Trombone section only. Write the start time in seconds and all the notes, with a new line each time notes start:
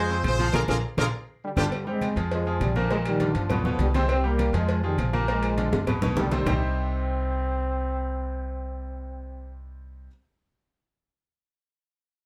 1.43 D3 G3
1.56 D3 G3
1.86 G#3 C4
2.31 F3 G#3
2.61 C3 G3
2.75 D3 F3
2.90 F3 G#3
3.05 D#3 G3
3.35 D3 F3
3.80 D3 G3
3.95 G#3 C4
4.10 G3 C4
4.25 G3 A#3
4.55 F3 G#3
4.85 D#3 G3
4.99 C3 F3
5.29 F3 G#3
6.17 D3 G3
6.31 D#3 G3
6.47 C4